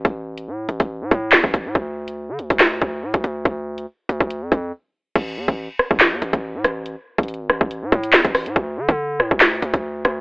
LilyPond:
<<
  \new Staff \with { instrumentName = "808-style bass" } { \clef bass \time 4/4 \key c \major \tempo 4 = 141 a,,4 a,8 a,,16 a,,8 a,16 a,8 e,16 a,,8 a,16 | d,4~ d,16 d16 d,16 d,8. d,8 a,16 d,16 d,8 | d,4 r8 d,16 d,8 f,16 f,8 r4 | a,,8 e,16 a,,8 r8 a,,8 e,16 a,,16 a,,8 a,16 a,,8~ |
a,,16 r8 a,,8 gis,,16 a,,16 a,,8 a,16 a,8 e,16 a,,8 a,16 | d,8 d16 d8. a,16 d,8. d,16 d,8. d,8 | }
  \new DrumStaff \with { instrumentName = "Drums" } \drummode { \time 4/4 <hh bd>8. hh16 r8 hh16 <hh bd>16 r8 <hh bd>8 <hc hh sn>16 bd16 <hh bd>8 | <hh bd>8. hh16 r8 hh16 <hh bd>16 <hc sn>8 <hh bd>8 r16 <hh bd>16 hh8 | <hh bd>8. hh16 r8 hh16 <hh bd>16 hh8 <hh bd>8 r4 | <cymc hh bd>8. <hh bd>16 r8 ss16 bd16 <hc hh sn>8 hh16 <hh bd>16 r8 <hh ss>8 |
hh8. <hh bd>32 hh32 hh32 hh16. ss16 bd16 hh8 <hh bd>16 hh16 <hc sn>16 <hh bd>16 <hho ss>16 hh16 | <hh bd>8. <hh bd>16 r8 ss16 bd16 <hc hh sn>8 hh16 <hh bd>16 r8 <hh ss>8 | }
>>